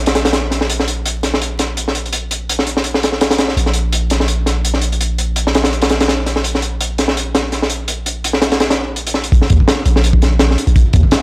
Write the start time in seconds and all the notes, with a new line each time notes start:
Already playing: A#1
0.06 snare, closed hi-hat
0.15 snare, closed hi-hat
0.25 snare, closed hi-hat
0.33 snare, closed hi-hat
0.51 snare, closed hi-hat
0.61 snare
0.70 closed hi-hat
0.80 snare
0.88 closed hi-hat
1.06 closed hi-hat
1.23 snare, closed hi-hat
1.34 snare
1.42 closed hi-hat
1.59 snare, closed hi-hat
1.77 closed hi-hat
1.88 snare
1.95 closed hi-hat
2.06 closed hi-hat
2.13 closed hi-hat
2.31 closed hi-hat
2.49 closed hi-hat
2.59 snare
2.67 closed hi-hat
2.77 snare
2.84 closed hi-hat
2.94 snare
3.03 snare, closed hi-hat
3.12 snare
3.21 snare, closed hi-hat
3.31 snare, closed hi-hat
3.38 snare, closed hi-hat
3.48 snare
3.57 A#1, closed hi-hat
3.66 snare
3.74 closed hi-hat
3.92 closed hi-hat
4.10 snare, closed hi-hat
4.20 snare
4.28 closed hi-hat
4.46 snare, closed hi-hat
4.65 closed hi-hat
4.74 snare
4.82 closed hi-hat
4.92 closed hi-hat
5.01 closed hi-hat
5.18 closed hi-hat
5.36 closed hi-hat
5.47 snare
5.55 snare, closed hi-hat
5.64 snare, closed hi-hat
5.73 closed hi-hat
5.82 snare, closed hi-hat
5.89 snare, closed hi-hat
6.00 snare, closed hi-hat
6.08 snare, closed hi-hat
6.26 snare, closed hi-hat
6.36 snare
6.44 closed hi-hat
6.55 snare
6.62 closed hi-hat
6.81 closed hi-hat
6.98 snare, closed hi-hat
7.08 snare
7.17 closed hi-hat
7.35 snare, closed hi-hat
7.52 snare, closed hi-hat
7.62 snare
7.70 closed hi-hat
7.88 closed hi-hat
8.06 closed hi-hat
8.24 closed hi-hat
8.33 snare
8.42 snare, closed hi-hat
8.52 snare, closed hi-hat
8.60 snare, closed hi-hat
8.70 snare, closed hi-hat
8.96 closed hi-hat
9.07 closed hi-hat
9.14 snare
9.24 closed hi-hat
9.32 A#1, kick, closed hi-hat
9.41 snare
9.50 D#2, kick, closed hi-hat
9.60 kick
9.68 snare, closed hi-hat
9.85 A#1, closed hi-hat
9.96 snare
10.04 closed hi-hat
10.13 kick
10.22 snare, closed hi-hat
10.39 snare, closed hi-hat
10.51 snare
10.58 closed hi-hat
10.67 A#1, closed hi-hat
10.76 A#1, kick, closed hi-hat
10.93 D#2, kick, closed hi-hat
11.03 kick
11.11 snare, closed hi-hat